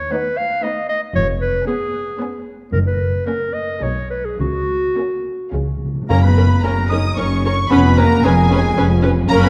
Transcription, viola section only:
0.13 0.51 B3 medium
0.64 1.03 B3 medium
1.68 2.07 B3 medium
2.21 2.60 B3 medium
3.27 3.67 A#3 medium
3.81 4.23 G#3 medium
4.96 5.39 A#3 medium
5.53 5.95 G#3 soft
6.09 6.18 C#4 medium
6.09 6.17 A#4 medium
6.37 6.45 C#4 medium
6.37 6.45 A#4 soft
6.63 6.71 C#4 medium
6.63 6.71 A#4 medium
6.91 6.99 C#4 medium
6.91 6.99 A#4 medium
7.17 7.25 C#4 medium
7.17 7.26 A#4 medium
7.45 7.53 C#4 medium
7.45 7.53 A#4 medium
7.71 7.79 C#4 medium
7.71 7.79 B4 medium
7.97 8.06 C#4 medium
7.97 8.05 B4 medium
8.24 8.32 C#4 medium
8.24 8.32 B4 medium
8.51 8.59 C#4 medium
8.51 8.60 B4 medium
8.77 8.85 C#4 medium
8.77 8.86 B4 medium
9.02 9.11 C#4 medium
9.02 9.10 B4 medium
9.29 9.49 C#4 medium
9.29 9.49 A#4 medium

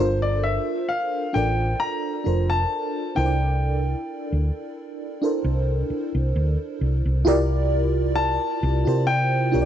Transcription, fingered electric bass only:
0.00 0.57 G1 medium
1.35 1.73 A1 medium
2.26 2.64 F1 medium
3.17 3.93 C2 medium
4.32 4.50 D2 medium
5.44 5.82 C2 medium
5.90 muted fingered electric bass stroke soft
6.15 6.32 C2 medium
6.36 6.55 D2 medium
6.81 7.01 C2 medium
7.06 7.23 C2 medium
7.27 8.37 C2 loud
8.63 8.83 C2 medium
8.87 9.56 C3 medium
9.54 9.65 C2 medium

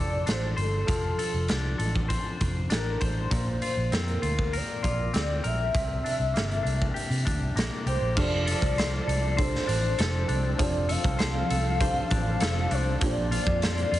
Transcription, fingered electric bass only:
0.00 0.22 F1 medium
0.28 0.52 A1 medium
0.57 0.82 G1 medium
0.89 1.13 F1 medium
1.34 1.46 F1 medium
1.50 1.74 C2 medium
1.79 2.16 A1 medium
2.41 2.65 F1 loud
2.70 2.95 A1 medium
3.01 3.26 A1 medium
3.31 3.56 A#1 medium
3.77 3.89 A#1 medium
3.91 4.16 F2 medium
4.22 4.59 D2 medium
4.84 5.08 A#1 medium
5.14 5.38 D2 medium
5.44 5.69 A#1 medium
5.75 5.99 C2 medium
6.20 6.32 C2 medium
6.35 6.59 G1 medium
6.65 6.89 C2 medium
7.10 7.22 C3 medium
7.27 7.39 D2 medium
7.40 7.53 C2 medium
7.55 7.68 A#1 medium
7.86 7.98 C2 medium
8.01 8.14 A#1 medium
8.17 8.53 F1 medium
8.62 8.99 C2 medium
9.07 9.56 C2 medium
9.69 9.93 A1 loud
9.99 10.23 F1 medium
10.29 10.53 C2 medium
10.59 10.96 F1 loud
11.04 11.41 C2 medium
11.50 11.99 C2 medium
12.11 12.35 A1 loud
12.41 12.65 F1 medium
12.71 12.95 C2 medium
13.01 13.38 A#1 loud
13.47 13.83 F2 loud
13.92 13.99 F2 medium

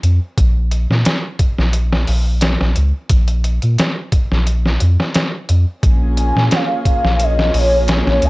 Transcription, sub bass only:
0.03 0.19 F2 medium
0.38 0.87 A#1 medium
0.89 1.04 A#2 medium
1.58 2.05 A#1 medium
2.08 2.57 A#1 medium
2.61 2.75 A#1 medium
2.77 2.92 C#2 loud
3.10 3.59 A#1 medium
3.63 3.77 A#2 medium
4.31 4.78 A#1 medium
4.81 4.97 F2 medium
5.49 5.65 F2 medium
5.83 6.32 A#1 loud
6.36 6.50 A#2 medium
7.04 7.51 A#1 medium
7.54 8.02 A#1 medium
8.06 8.20 A#1 medium
8.22 8.30 C#2 loud

